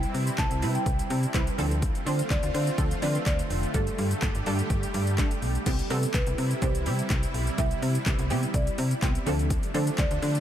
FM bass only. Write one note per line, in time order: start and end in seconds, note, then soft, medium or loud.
0.14 0.30 C3 medium
0.38 0.47 C2 loud
0.51 0.64 C2 medium
0.62 0.78 C3 medium
0.86 1.02 C2 loud
1.10 1.26 C3 loud
1.34 1.50 C2 loud
1.58 1.90 D2 loud
2.06 2.22 D3 loud
2.30 2.39 D2 loud
2.43 2.50 D2 loud
2.54 2.70 D3 loud
2.78 2.94 D2 loud
3.02 3.18 D3 medium
3.26 3.42 D2 loud
3.50 3.66 F1 medium
3.74 3.90 G1 loud
3.98 4.14 G2 loud
4.22 4.31 G1 loud
4.35 4.42 G1 loud
4.46 4.62 G2 loud
4.70 4.86 G1 loud
4.94 5.20 G2 loud
5.18 5.34 G1 loud
5.42 5.58 B1 medium
5.66 5.82 C2 loud
5.90 6.06 C3 loud
6.14 6.23 C2 loud
6.27 6.34 C2 loud
6.38 6.54 C3 loud
6.62 6.88 C2 loud
6.86 7.02 C3 loud
7.10 7.26 C2 loud
7.34 7.50 B1 medium
7.58 7.74 C2 loud
7.82 7.98 C3 loud
8.06 8.15 C2 loud
8.19 8.32 C2 medium
8.30 8.46 C3 loud
8.54 8.70 C2 loud
8.78 8.94 C3 loud
9.02 9.18 C2 loud
9.26 9.58 D2 loud
9.74 9.90 D3 loud
9.98 10.07 D2 loud
10.11 10.18 D2 loud
10.22 10.38 D3 loud